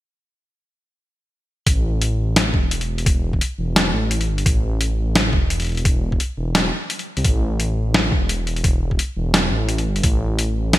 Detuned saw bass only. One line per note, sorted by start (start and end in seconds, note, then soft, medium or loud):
1.67 2.55 A1 medium
2.54 3.40 E1 medium
3.58 3.92 E1 medium
3.93 4.30 A1 medium
4.28 4.44 G1 medium
4.46 5.34 A1 medium
5.33 6.19 E1 medium
6.38 6.71 E1 medium
7.17 7.24 C2 medium
7.25 8.13 A1 medium
8.12 8.98 E1 medium
9.17 9.50 E1 medium
9.51 9.88 A1 medium
9.86 10.02 G1 medium
10.04 10.79 A1 loud